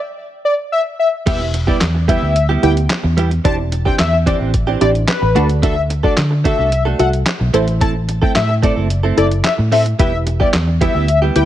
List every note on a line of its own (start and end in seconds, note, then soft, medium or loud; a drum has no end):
0.45 0.54 D5 medium
0.72 0.81 E5 medium
0.99 1.09 E5 medium
1.26 1.72 E1 loud
1.26 1.40 G3 medium
1.26 2.06 B3 medium
1.26 1.40 B3 loud
1.26 2.06 E4 medium
1.26 1.40 E4 loud
1.26 2.07 G4 medium
1.26 1.39 G4 loud
1.26 1.45 E5 loud
1.26 kick loud
1.26 closed hi-hat loud
1.26 crash loud
1.40 muted clean electric guitar stroke soft
1.54 muted clean electric guitar stroke soft
1.54 closed hi-hat medium
1.67 1.79 G3 medium
1.67 1.79 B3 medium
1.67 1.78 E4 medium
1.67 1.78 G4 medium
1.67 1.77 D5 medium
1.67 kick medium
1.81 2.16 E2 loud
1.81 muted clean electric guitar stroke medium
1.81 snare loud
1.81 clap loud
1.81 closed hi-hat medium
1.94 muted clean electric guitar stroke soft
2.08 2.22 G3 loud
2.08 2.22 B3 medium
2.08 2.21 E4 loud
2.08 2.21 G4 loud
2.08 2.47 E5 medium
2.08 kick loud
2.08 closed hi-hat medium
2.22 2.56 D2 medium
2.22 2.33 G3 medium
2.22 2.33 B3 medium
2.22 2.33 E4 medium
2.22 2.32 G4 medium
2.36 muted clean electric guitar stroke soft
2.36 closed hi-hat medium
2.49 2.61 G3 medium
2.49 2.62 B3 medium
2.49 2.63 E4 medium
2.49 2.63 G4 loud
2.63 2.86 D2 loud
2.63 2.73 G3 medium
2.63 3.23 B3 medium
2.63 2.74 B3 medium
2.63 3.23 E4 medium
2.63 2.74 E4 medium
2.63 3.23 G4 medium
2.63 2.74 G4 medium
2.63 2.72 G5 medium
2.63 closed hi-hat medium
2.76 muted clean electric guitar stroke medium
2.76 closed hi-hat medium
2.90 snare medium
2.90 clap loud
2.90 closed hi-hat loud
3.04 3.38 E2 medium
3.04 muted clean electric guitar stroke medium
3.17 3.31 G3 medium
3.17 3.31 B3 medium
3.17 3.31 E4 medium
3.17 3.30 G4 medium
3.17 closed hi-hat medium
3.31 muted clean electric guitar stroke medium
3.31 closed hi-hat medium
3.44 3.90 E1 loud
3.44 3.58 E3 medium
3.44 4.25 C4 medium
3.44 3.58 C4 loud
3.44 4.25 D4 medium
3.44 3.58 D4 loud
3.44 4.25 E4 medium
3.44 4.25 G4 medium
3.44 3.57 G4 loud
3.44 4.25 D5 medium
3.44 3.54 A5 loud
3.44 kick loud
3.44 closed hi-hat loud
3.58 muted clean electric guitar stroke medium
3.72 muted clean electric guitar stroke soft
3.72 closed hi-hat medium
3.85 3.97 E3 medium
3.85 3.97 C4 medium
3.85 3.96 D4 medium
3.85 3.96 G4 medium
3.85 3.95 G5 medium
3.85 kick medium
3.99 4.34 E2 loud
3.99 4.18 E5 medium
3.99 snare medium
3.99 clap loud
3.99 closed hi-hat medium
4.13 muted clean electric guitar stroke soft
4.26 4.40 E3 medium
4.26 4.40 C4 medium
4.26 4.39 D4 medium
4.26 4.39 G4 loud
4.26 4.36 D5 medium
4.26 kick loud
4.26 closed hi-hat medium
4.40 4.75 A1 medium
4.40 4.52 E3 medium
4.40 4.51 C4 medium
4.40 4.51 D4 medium
4.40 4.51 G4 medium
4.54 kick medium
4.54 closed hi-hat medium
4.67 4.80 E3 medium
4.67 4.80 C4 medium
4.67 4.81 D4 medium
4.67 4.81 G4 medium
4.81 5.04 A1 loud
4.81 4.92 E3 medium
4.81 5.36 C4 medium
4.81 4.92 C4 medium
4.81 5.36 D4 medium
4.81 4.92 D4 medium
4.81 5.36 E4 medium
4.81 5.36 G4 medium
4.81 4.92 G4 medium
4.81 4.90 D5 medium
4.81 5.35 D5 medium
4.81 closed hi-hat medium
4.94 muted clean electric guitar stroke soft
4.94 closed hi-hat medium
5.08 5.47 B4 medium
5.08 muted clean electric guitar stroke soft
5.08 snare medium
5.08 clap loud
5.08 closed hi-hat loud
5.22 5.34 A1 medium
5.22 muted clean electric guitar stroke soft
5.35 6.04 D2 loud
5.35 5.49 A3 medium
5.35 5.49 D4 medium
5.35 6.23 F#4 medium
5.35 5.48 F#4 loud
5.35 6.23 A4 medium
5.35 5.48 A4 loud
5.35 6.23 D5 medium
5.35 closed hi-hat medium
5.49 muted clean electric guitar stroke soft
5.49 closed hi-hat medium
5.62 5.76 A3 loud
5.62 5.76 D4 loud
5.62 5.76 F#4 loud
5.62 5.75 A4 loud
5.62 5.81 E5 loud
5.62 kick loud
5.62 closed hi-hat loud
5.76 muted clean electric guitar stroke medium
5.90 muted clean electric guitar stroke soft
5.90 closed hi-hat medium
6.03 6.15 A3 medium
6.03 6.15 D4 medium
6.03 6.15 F#4 medium
6.03 6.14 A4 medium
6.03 6.13 D5 medium
6.03 kick loud
6.17 6.52 D3 medium
6.17 snare medium
6.17 clap loud
6.17 closed hi-hat medium
6.31 muted clean electric guitar stroke medium
6.44 6.58 A3 medium
6.44 6.58 D4 medium
6.44 6.57 F#4 medium
6.44 6.57 A4 medium
6.44 6.83 E5 medium
6.44 kick loud
6.44 closed hi-hat medium
6.58 6.93 C2 medium
6.58 6.70 A3 medium
6.58 6.69 D4 medium
6.58 6.69 F#4 medium
6.58 6.69 A4 medium
6.72 muted clean electric guitar stroke medium
6.72 closed hi-hat medium
6.85 6.98 A3 medium
6.85 6.98 D4 medium
6.85 6.99 F#4 medium
6.85 6.99 A4 medium
6.99 7.22 C2 loud
6.99 7.10 A3 medium
6.99 7.10 D4 medium
6.99 7.54 F#4 medium
6.99 7.10 F#4 medium
6.99 7.53 A4 medium
6.99 7.11 A4 medium
6.99 7.54 E5 medium
6.99 7.09 F#5 medium
6.99 closed hi-hat medium
7.13 muted clean electric guitar stroke soft
7.13 closed hi-hat medium
7.26 snare medium
7.26 clap loud
7.26 closed hi-hat loud
7.40 7.52 B1 medium
7.40 muted clean electric guitar stroke soft
7.54 8.22 A1 loud
7.54 7.67 A3 medium
7.54 7.67 C4 medium
7.54 8.41 E4 loud
7.54 7.67 E4 medium
7.54 8.41 A4 medium
7.54 7.66 A4 medium
7.54 8.41 C5 loud
7.54 closed hi-hat medium
7.67 muted clean electric guitar stroke medium
7.67 closed hi-hat medium
7.81 7.94 A3 medium
7.81 7.95 C4 medium
7.81 7.94 E4 loud
7.81 7.93 A4 loud
7.81 7.90 A5 loud
7.81 kick loud
7.81 closed hi-hat loud
7.94 muted clean electric guitar stroke medium
8.08 muted clean electric guitar stroke soft
8.08 closed hi-hat medium
8.22 8.33 A3 medium
8.22 8.33 C4 medium
8.22 8.33 E4 medium
8.22 8.32 A4 medium
8.22 8.31 G5 medium
8.22 kick loud
8.35 8.70 A2 loud
8.35 8.54 E5 medium
8.35 snare loud
8.35 clap loud
8.35 closed hi-hat medium
8.49 muted clean electric guitar stroke soft
8.62 8.76 A3 medium
8.62 8.76 C4 medium
8.62 8.76 E4 medium
8.62 8.75 A4 medium
8.62 8.72 D5 medium
8.62 kick loud
8.62 closed hi-hat medium
8.76 9.11 F#1 medium
8.76 8.88 A3 medium
8.76 8.88 C4 medium
8.76 8.87 E4 medium
8.76 8.87 A4 medium
8.90 muted clean electric guitar stroke medium
8.90 closed hi-hat medium
9.03 9.16 A3 medium
9.03 9.17 C4 medium
9.03 9.17 E4 medium
9.03 9.17 A4 medium
9.17 9.40 F#1 loud
9.17 9.28 A3 medium
9.17 9.28 C4 medium
9.17 9.77 E4 medium
9.17 9.29 E4 medium
9.17 9.77 A4 medium
9.17 9.29 A4 medium
9.17 9.27 D5 medium
9.17 9.78 D5 medium
9.17 closed hi-hat medium
9.31 muted clean electric guitar stroke medium
9.31 closed hi-hat medium
9.44 9.54 E5 medium
9.44 muted clean electric guitar stroke soft
9.44 snare medium
9.44 clap loud
9.44 closed hi-hat loud
9.58 9.93 A2 medium
9.58 muted clean electric guitar stroke soft
9.72 9.85 A3 medium
9.72 9.86 C4 medium
9.72 9.85 E4 medium
9.72 9.84 A4 loud
9.72 9.81 E5 medium
9.72 open hi-hat medium
9.86 muted clean electric guitar stroke medium
9.86 closed hi-hat medium
9.99 10.45 E1 loud
9.99 10.13 G3 medium
9.99 10.13 B3 loud
9.99 10.79 E4 medium
9.99 10.12 E4 loud
9.99 10.79 G4 medium
9.99 10.12 G4 loud
9.99 10.79 B4 medium
9.99 10.18 E5 loud
9.99 kick loud
9.99 closed hi-hat loud
10.13 muted clean electric guitar stroke medium
10.26 muted clean electric guitar stroke soft
10.26 closed hi-hat medium
10.40 10.52 G3 medium
10.40 10.51 B3 medium
10.40 10.51 E4 medium
10.40 10.51 G4 medium
10.40 10.50 D5 medium
10.40 kick medium
10.53 10.88 E2 loud
10.53 snare loud
10.53 clap loud
10.53 closed hi-hat medium
10.67 muted clean electric guitar stroke soft
10.81 10.94 G3 medium
10.81 10.95 B3 loud
10.81 10.94 E4 loud
10.81 10.93 G4 loud
10.81 11.20 E5 medium
10.81 kick loud
10.81 closed hi-hat medium
10.95 11.29 D2 medium
10.95 11.06 G3 medium
10.95 11.06 B3 medium
10.95 11.06 E4 medium
10.95 11.05 G4 medium
11.08 muted clean electric guitar stroke soft
11.08 closed hi-hat medium
11.22 11.34 G3 medium
11.22 11.35 B3 medium
11.22 11.36 E4 medium
11.22 11.35 G4 medium
11.35 11.45 D2 medium
11.35 11.45 G3 medium
11.35 11.45 B3 medium
11.35 11.45 E4 medium
11.35 11.45 G4 medium
11.35 11.45 B4 medium
11.35 11.45 G5 medium
11.35 closed hi-hat medium